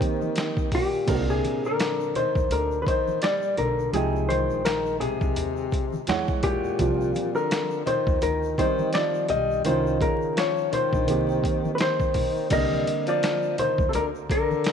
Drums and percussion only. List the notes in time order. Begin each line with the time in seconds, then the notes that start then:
0.01 kick, closed hi-hat, shaker
0.22 high conga, shaker
0.36 snare, closed hi-hat, shaker
0.57 kick, shaker
0.72 kick, open hi-hat, low conga, shaker
0.93 shaker
1.08 kick, closed hi-hat, crash, shaker
1.29 shaker
1.44 closed hi-hat, high conga, shaker
1.64 shaker
1.80 snare, closed hi-hat, shaker
2.00 shaker
2.15 closed hi-hat, low conga, shaker
2.35 kick, shaker
2.51 closed hi-hat, shaker
2.72 shaker
2.87 kick, closed hi-hat, shaker
3.08 high conga, shaker
3.22 snare, closed hi-hat, shaker
3.42 shaker
3.57 closed hi-hat, low conga, shaker
3.79 shaker
3.94 closed hi-hat, shaker
4.16 shaker
4.30 closed hi-hat, high conga, shaker
4.50 shaker
4.66 snare, closed hi-hat, shaker
4.86 shaker
5.01 closed hi-hat, low conga, shaker
5.21 kick, shaker
5.36 closed hi-hat, shaker
5.57 shaker
5.72 kick, closed hi-hat, shaker
5.93 high conga, shaker
6.07 snare, closed hi-hat, shaker
6.28 kick, shaker
6.43 kick, closed hi-hat, low conga, shaker
6.64 shaker
6.79 kick, closed hi-hat, shaker
7.01 shaker
7.15 closed hi-hat, high conga, shaker
7.35 shaker
7.51 snare, closed hi-hat, shaker
7.71 shaker
7.87 closed hi-hat, low conga, shaker
8.07 kick, shaker
8.22 closed hi-hat, shaker
8.43 shaker
8.58 kick, closed hi-hat, shaker
8.79 high conga, shaker
8.93 snare, closed hi-hat, shaker
9.14 shaker
9.29 closed hi-hat, low conga, shaker
9.51 shaker
9.65 closed hi-hat, shaker
9.87 shaker
10.01 kick, closed hi-hat, high conga, low conga, shaker
10.22 shaker
10.37 snare, closed hi-hat, shaker
10.57 shaker
10.73 closed hi-hat, low conga, shaker
10.93 kick, shaker
11.08 closed hi-hat, shaker
11.29 shaker
11.44 kick, closed hi-hat, shaker
11.65 high conga, shaker
11.78 snare, closed hi-hat, shaker
12.00 kick, shaker
12.14 kick, open hi-hat, low conga, shaker
12.36 shaker
12.50 kick, closed hi-hat, crash, shaker
12.72 high conga, shaker
12.87 closed hi-hat, shaker
13.07 closed hi-hat, shaker
13.23 snare, closed hi-hat, shaker
13.42 shaker
13.58 closed hi-hat, low conga, shaker
13.78 kick, shaker
13.93 closed hi-hat, shaker
14.15 shaker
14.30 kick, closed hi-hat, shaker
14.51 high conga, shaker
14.64 snare, closed hi-hat, shaker